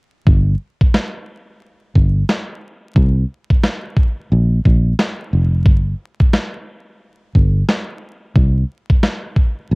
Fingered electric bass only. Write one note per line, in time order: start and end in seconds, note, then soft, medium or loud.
0.27 0.54 G1 loud
1.96 2.23 G1 medium
2.96 3.24 C2 loud
4.32 4.59 A#1 medium
4.66 4.92 A#1 medium
5.33 5.66 F1 medium
5.66 5.93 G1 loud
7.35 7.62 G1 medium
8.36 8.63 C2 loud
9.71 9.75 A#1 medium